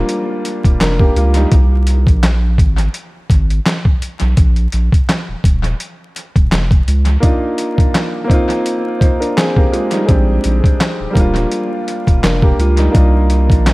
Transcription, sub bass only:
0.65 0.78 D#1 medium
0.81 1.10 F1 loud
1.16 1.46 C#2 medium
1.52 2.08 C2 loud
2.07 2.60 A#1 medium
2.58 2.88 G#1 loud
3.30 3.60 G#1 medium
4.22 4.35 B1 medium
4.38 4.67 A#1 loud
4.73 4.90 A#1 medium
5.29 5.35 D#1 soft
5.44 5.74 D#1 loud
6.36 6.49 D#1 medium
6.52 6.82 F1 loud
6.88 7.17 C#2 medium
10.09 10.39 A#1 loud
10.45 10.61 A#1 medium
11.00 11.07 D#1 soft
11.16 11.46 D#1 medium
12.08 12.21 D#1 medium
12.24 12.53 F1 medium
12.59 12.89 C#2 medium
12.95 13.51 C2 loud
13.50 13.73 A#1 medium

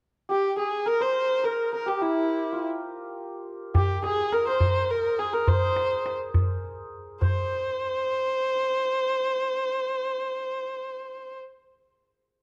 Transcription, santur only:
0.29 0.62 G4 medium
0.56 1.92 G#4 medium
0.86 1.43 A#4 medium
1.00 3.64 C5 medium
1.44 1.72 A#4 medium
1.72 4.32 A#4 medium
1.86 3.74 G4 medium
2.01 2.58 E4 medium
2.52 5.89 F4 soft
3.74 4.08 G4 medium
4.02 5.18 G#4 medium
4.32 5.32 A#4 medium
4.46 5.47 C5 medium
5.19 8.22 G#4 medium
5.33 8.16 A#4 medium
5.47 7.21 C5 medium
7.21 11.34 C5 medium

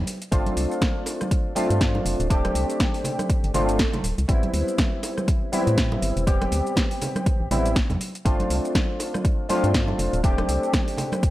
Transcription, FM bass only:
0.32 0.50 G1 loud
0.57 0.67 C2 medium
1.70 2.00 G2 medium
2.06 2.15 F1 medium
2.20 2.50 D1 medium
2.55 2.65 C2 medium
3.44 3.51 G1 medium
3.54 3.86 G1 medium
4.04 4.14 D1 medium
4.18 4.25 C2 loud
4.29 4.47 A1 medium
4.54 4.63 D2 medium
5.67 5.97 A2 medium
6.02 6.12 G1 medium
6.17 6.47 E1 medium
6.52 6.62 D2 medium
7.41 7.48 A1 medium
7.51 7.83 A1 medium
7.90 7.97 E2 medium
8.25 8.44 G1 medium
8.50 8.60 C2 medium
9.64 9.94 G2 medium
9.99 10.09 F1 medium
10.13 10.43 D1 medium
10.49 10.58 C2 medium

